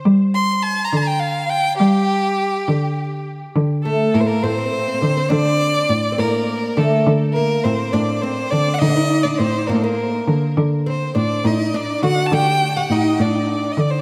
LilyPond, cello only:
\new Staff \with { instrumentName = "Cello" } { \clef bass \time 6/8 \tempo 4. = 68 g4. d4. | g4. d4. | d4 a,16 r16 a,4 d8 | d4 a,16 r16 a,4 d8 |
d4 a,16 r16 a,4 d8 | d4 a,16 r16 a,4 d8 | d4 a,16 r16 a,4 d8 | d4 a,16 r16 a,4 d8 | }